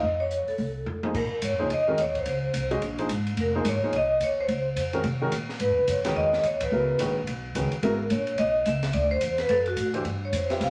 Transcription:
Already playing: D#5
0.02 F2
0.20 C#5
0.31 closed hi-hat
0.48 A4, muted upright bass stroke, open hi-hat
0.58 C2, open hi-hat
0.86 F2, high tom
1.03 F3 A#3 D#4 G#4 C5, high tom
1.14 A#2 A#4, kick, crash
1.42 G#2 C#5, hi-hat pedal, ride
1.51 F2
1.59 C#2 F3 A#3 D#4 G#4 C5
1.70 F2 D#5, ride
1.88 D#3 G#3 C#4 F#4 A#4
1.98 D#2 C#5, hi-hat pedal, ride
2.15 C5, kick, ride
2.26 C#2, ride
2.53 C2, hi-hat pedal, ride
2.71 G#3 C#4 F#4 C5 D#5, ride
2.81 A#1, ride
2.98 F3 A#3 D#4 G#4 C5, ride
3.09 G#1, hi-hat pedal, ride
3.27 ride
3.37 F1 A#4, ride
3.55 F3 A#3 D#4 G#4 C5
3.65 G#1 C#5, hi-hat pedal, ride
3.82 F3 A#3 D#4 G#4 C5, muted upright bass stroke
3.93 C2 D#5, ride
4.20 D#2 C#5, hi-hat pedal, ride
4.41 C5
4.48 C#2, ride
4.76 F2, hi-hat pedal, ride
4.93 D#3 G#3 C#4 F#4 A#4, ride
5.03 C3, ride
5.21 D#3 G#3 C#4 F#4 A#4
5.32 A#2, hi-hat pedal, ride
5.49 snare
5.60 G#2 B4, ride
5.69 E2
5.79 C#2
5.87 F#2 C#5, hi-hat pedal, ride
5.97 E2
6.05 C#2 D#3 G#3 C#4 F#4 B4, snare, ride
6.15 E2 D#5
6.33 snare
6.43 D#2 C#5, hi-hat pedal, ride
6.60 B4, kick, ride
6.71 C#2 C#3 F#3 B3 E4 A#4
6.99 A#1 D#3 G#3 C#4 F#4 B4, hi-hat pedal, ride
7.27 B1, ride
7.55 C#2 D#3 G#3 C#4 F#4 B4, hi-hat pedal, ride
7.72 ride
7.82 G#1 C#3 F#3 B3 E4 A#4, ride
8.10 A#1 C#5, hi-hat pedal, ride
8.27 ride
8.38 B1 D#5, ride
8.65 C#2 E5, hi-hat pedal, ride
8.83 snare, ride
8.93 D2 D5, ride
9.11 C5
9.21 E2, hi-hat pedal, ride
9.38 B4, snare, ride
9.49 F#2 A4, ride
9.66 F#4, ride
9.76 A2, hi-hat pedal, ride
9.94 E3 A3 D4 G4 C5, ride
10.05 G2, ride
10.25 C#5
10.32 F2 C5, hi-hat pedal, ride
10.50 G3 C4 F4 B4 E5, snare, ride
10.60 C2 F5, snare, ride

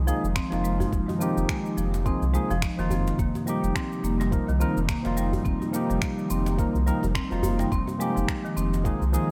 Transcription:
Already playing: C2 C3 F3 G#3 D#4
0.07 F3 A#3 D#4 G#4, cabasa
0.24 F1, cabasa
0.36 C4, finger snap, kick, cabasa
0.50 F1 F3 A#3 D#4 F4, djembe slap, cabasa
0.64 G#3, cabasa
0.80 F3, djembe bass, cabasa
0.93 F1, kick, cabasa
1.09 D#3, djembe tone, cabasa
1.19 F3 A#3 C4 D#4, cabasa
1.23 G4
1.37 F1, cabasa
1.49 G#3, finger snap, kick, cabasa
1.66 cabasa
1.77 F1 F3, cabasa
1.94 djembe slap, cabasa
2.05 F3 A#3 C4 D#4 G#4, kick, cabasa
2.22 C2, djembe tone, cabasa
2.33 F3 G#3 A#3 D#4 G#4, cabasa
2.50 F1 F3, djembe tone, cabasa
2.62 finger snap, kick, cabasa
2.78 F1 D#3 F3 A#3 D#4 F4, djembe tone, cabasa
2.90 C4, djembe bass, cabasa
3.07 djembe slap, cabasa
3.19 F1 G3 A#3 D#4, kick, cabasa
3.35 djembe tone, cabasa
3.45 F3 G3 A#3 D#4 G4, cabasa
3.64 F1, cabasa
3.76 C4, finger snap, kick, cabasa
3.92 cabasa
4.04 F1 A#3, cabasa
4.20 G3, djembe slap, cabasa
4.31 F3 A#3 D#4 A#4, kick, cabasa
4.48 C2 D#3, djembe tone, cabasa
4.59 F3 A#3 C4 D#4 A#4, cabasa
4.77 F1, cabasa
4.89 A#3, finger snap, kick, cabasa
5.03 F1 F3 A#3 D#4 F4, djembe slap, cabasa
5.17 G3, cabasa
5.33 djembe bass, cabasa
5.45 F1 C4, kick, cabasa
5.62 djembe tone, cabasa
5.72 F3 A#3 D#4 G4, cabasa
5.90 F1 G3, cabasa
6.02 finger snap, kick, cabasa
6.18 D#3, cabasa
6.30 F1 C4, cabasa
6.46 djembe slap, cabasa
6.58 F3 A#3 D#4 A#4, kick, cabasa
6.75 C2, djembe tone, cabasa
6.86 F3 G3 A#3 D#4 A#4, cabasa
7.03 F1, djembe tone, cabasa
7.15 C4, finger snap, kick, cabasa
7.30 F1 F3 A#3 D#4 F4, djembe tone, cabasa
7.43 A#3, djembe tone, djembe bass, cabasa
7.59 G3, djembe slap, cabasa
7.72 F1 F3 G#3 C4 D#4, kick, cabasa
7.87 djembe tone, cabasa
7.98 F3 G#3 A#3 D#4 G4, cabasa
8.16 F1 F3, cabasa
8.28 finger snap, kick, cabasa
8.45 D#3, cabasa
8.57 F1 C4, cabasa
8.74 djembe slap, cabasa
8.84 F3 G#3 A#3 D#4 G#4, kick, cabasa
9.01 C2, djembe tone, cabasa
9.12 D#3 F3 A#3 D#4 G#4, cabasa

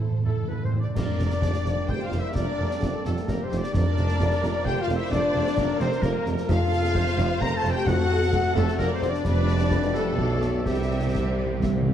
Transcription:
Already playing: A4 C5
0.01 E2 A2
0.11 A2
0.18 A2
0.24 E2 A2 A3 E4 A4
0.35 A2
0.43 A2 B4
0.47 E2 A2 B3 E4 B4
0.58 A2
0.63 A2 C4 C5
0.73 E2 A2 E4
0.79 A2 D4 D5
0.88 A2
0.94 F1 F2 G3 A#3 A#4 D5, concert bass drum, snare, crash
0.98 D4
1.19 F1 F2, snare
1.30 snare
1.42 F1 F2 D5, concert bass drum, snare
1.54 snare
1.65 F1 F2, snare
1.87 F1 F2 C5 G5, concert bass drum
1.92 G4
2.03 F5
2.08 F4
2.12 F1 F2, snare
2.18 E4 E5
2.35 F1 F2 D4 A#4 D5, concert bass drum, snare
2.59 F1 F2
2.71 snare
2.81 F1 F2 A4, concert bass drum, snare
3.05 F1 F2 A3 A4, snare
3.17 snare
3.28 F1 F2 A#3 G4 A#4, concert bass drum, snare
3.43 C4 C5
3.47 F2 C5
3.52 F1, snare
3.57 D4 D5
3.62 D5, snare
3.72 F1 F2 F3 A#3 D4 D5, concert bass drum, snare, crash
3.76 A#4 D5
3.97 F1 F2, snare
4.09 snare
4.20 F1 F2, concert bass drum, snare
4.31 snare
4.43 F1 F2, snare
4.65 F1 F2 G4 C5 G5, concert bass drum
4.81 F4 F5
4.88 F1 F2, snare
4.96 E4 E5
5.10 F1 F2 D4 D5, concert bass drum, snare
5.34 F1 F2
5.47 snare
5.57 F1 F2 A#4, concert bass drum, snare
5.80 F1 F2 C4 C5, snare
5.92 snare
6.02 F1 F2 A#3 A#4, concert bass drum, snare
6.26 F1 F2, snare
6.38 snare
6.48 F1 F2 C3 A3 F4 A4 F5, concert bass drum, snare, crash
6.73 snare
6.84 snare
6.95 F1 F2 C5, concert bass drum, snare
7.07 snare
7.18 F1 F2, snare
7.40 F1 F2 A#4 A#5, concert bass drum
7.55 A4 A5
7.64 F1 F2, snare
7.70 G4 G5
7.85 F1 F2 F#4 A4 F#5, concert bass drum, snare
7.89 F#5
8.22 snare
8.33 F1 F2, concert bass drum, snare
8.55 F1 F2 A3 A4, snare
8.68 snare
8.78 F1 F2 A#3 A#4 D5, concert bass drum, snare
8.93 C4 C5
9.02 F1 F2, snare
9.09 D4 D5
9.14 snare
9.24 F1 F2 B2 G3 D4 B4 D5, concert bass drum, snare, crash
9.48 snare
9.59 snare
9.71 B4, concert bass drum, snare
9.82 snare
9.94 A3 A4, snare
10.18 B1 B2 D5, concert bass drum
10.42 snare
10.66 C2 C3 E3 G3 G4 E5, concert bass drum, snare
10.74 C3
10.83 C3
10.98 C3
11.07 C3
11.15 C3 E5, concert bass drum, snare
11.23 C3
11.31 C3
11.37 C3 D5
11.45 C3
11.52 C3
11.60 C3 E5, concert bass drum, snare
11.68 C3
11.76 C3
11.83 C3
11.88 F5

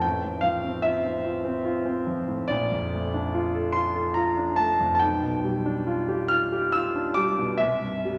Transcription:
0.02 A1 G5
0.24 A2
0.41 F3 F5
0.64 C4
0.82 F4 E5
1.05 C4
1.25 F4
1.45 C4
1.65 F4
1.85 C4
2.07 F3
2.28 A2
2.48 A#1 D5
2.72 F2
2.94 A3
3.14 D4
3.34 F4
3.54 A4
3.72 F4 C6
3.95 A4
4.14 F4 A#5
4.37 D4
4.56 A3 A5
4.80 F2
4.95 A5
4.99 B1 G5
5.22 B2
5.44 G3
5.66 D4
5.87 F4
6.08 G4
6.28 F4 F6
6.52 G4
6.72 F4 E6
6.96 D4
7.14 G3 D6
7.38 B2
7.58 C2 E5
7.82 G2
8.05 G3

